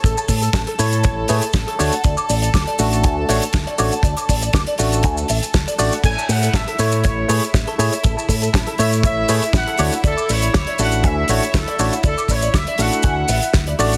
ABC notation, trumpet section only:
X:1
M:4/4
L:1/16
Q:"Swing 16ths" 1/4=120
K:Dlyd
V:1 name="Trumpet section"
z16 | z16 | z16 | g2 f2 e2 c2 c4 z4 |
z6 e2 e4 f3 z | A2 c4 f2 e2 c2 A3 z | A2 c2 e2 f6 z4 |]